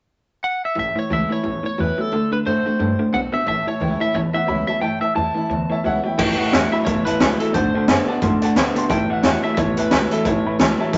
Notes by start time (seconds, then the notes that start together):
0.44 F#5
0.65 E5
0.75 A1 A2 E3
0.79 E5
0.96 A2 E3 C#5, muted upright bass stroke
1.10 C#2 A2 E3 G3 C#4 E4 E5
1.29 A2 E3 C#4 E4 C#5, muted upright bass stroke
1.43 A1 E2 A2 E3
1.63 A2 E3 C#5, muted upright bass stroke
1.77 E2 A2 E3 F#3 G3 C#4 E4 B4
1.98 A2 F#3 A4, muted upright bass stroke
2.12 D2 D3 A3
2.31 D2 D3 A3 B4
2.45 A2 D3 A3 C4 F#4 C5
2.66 D3 A3 C4 F#4, muted upright bass stroke
2.79 G2 A2 D3 A3
2.99 D3 A3, muted upright bass stroke
3.13 B1 D3 A3 B3 C4 F#4 F#5
3.32 D3 B3 C4 F#4 E5, muted upright bass stroke
3.46 A1 A2 E3 C#5 E5 A5
3.65 A2 E3 C#5 E5 A5, muted upright bass stroke
3.80 C#2 A2 E3 G3 C#4 E4 C#5 E5 G5
4.00 A2 E3 C#4 E4 C#5 E5 A5, muted upright bass stroke
4.14 A1 E2 A2 E3 C#5 E5 A5
4.33 A2 E3 C#5 E5 F#5, muted upright bass stroke
4.47 C#2 A2 E3 F#3 G3 C#4 E4 C#5 E5 B5
4.67 A2 F#3 C#4 E4 C#5 E5 A5, muted upright bass stroke
4.81 G1 A2 E3 C#5 E5 G5 A5
5.01 A2 E3 C#5 E5 A5
5.15 E2 A2 E3 G3 C#4 E4 C#5 E5 A5
5.35 A2 E3 C#4 E4 C#5 E5 A5
5.50 D2 E2 A2 E3 C#5 E5 A5
5.70 A2 E3 C#5 E5 A5, muted upright bass stroke
5.84 C#2 A2 E3 F#3 G3 C#4 E4 C#5 E5 F#5
6.04 A2 F#3 C#4 E4 C#5 E5 G5
6.18 A1 A2 E3 C#5 E5 G5 A5, kick, crash
6.37 A2 E3 C#5 E5 F#5 G5, muted upright bass stroke
6.51 E2 A2 E3 F#3 G3 C#4 E4 E5, snare, closed hi-hat
6.71 A2 F#3 C#4 E4 C#5 E5 B5, muted upright bass stroke
6.85 C#2 E2 A2 E3 C#5 E5 A5, kick, closed hi-hat
7.05 E2 A2 E3 B4 C#5 E5 A5, closed hi-hat
7.19 C#2 A2 E3 F#3 G3 C#4 E4 A5, snare, closed hi-hat
7.39 A2 F#3 C#4 E4 A4 C#5 E5 A5, muted upright bass stroke, closed hi-hat
7.53 D2 D3 A3 C5 D5 F#5 A5, kick, closed hi-hat
7.74 D3 A3 D5 F#5 A5, muted upright bass stroke
7.88 F#2 D3 A3 B3 C4 F#4 F#5 A5, snare, closed hi-hat
8.07 D3 B3 C4 F#4 D5 F#5 A5, muted upright bass stroke
8.21 F#2 A2 D3 A3 D5 F#5 C6, kick, closed hi-hat
8.42 D3 A3 D5 F#5 A5, closed hi-hat
8.55 D2 D3 A3 B3 C4 F#4 F#5 A5, snare, closed hi-hat
8.75 D3 B3 C4 F#4 D5 F#5 C6, muted upright bass stroke, closed hi-hat
8.89 A1 A2 E3 C#5 E5 G5 A5, kick, closed hi-hat
9.08 A2 E3 C#5 E5 F#5, muted upright bass stroke
9.23 E2 A2 E3 F#3 G3 C#4 E4 E5 G5, snare, closed hi-hat
9.42 A2 F#3 C#4 E4 C#5 E5 A5
9.55 E2 A2 C#5 E5, kick, closed hi-hat
9.59 E3 A5
9.77 E2 A2 E3 B4 C#5 E5 A5, closed hi-hat
9.91 C#2 A2 E3 F#3 G3 C#4 E4 E5, snare, closed hi-hat
10.11 A2 F#3 C#4 E4 A4 C#5 E5 A5, muted upright bass stroke, closed hi-hat
10.24 A1 A2 E3 C#5 E5 A5, kick, closed hi-hat
10.45 A2 E3 C#5 E5 B5, muted upright bass stroke
10.59 C#2 A2 E3 F#3 G3 C#4 E4 C#5 E5 A5, snare, closed hi-hat
10.78 A2 F#3 C#4 E4 C#5 E5 A5, muted upright bass stroke
10.92 C#2 A2 B2 E3 C#5 E5 A5, kick, closed hi-hat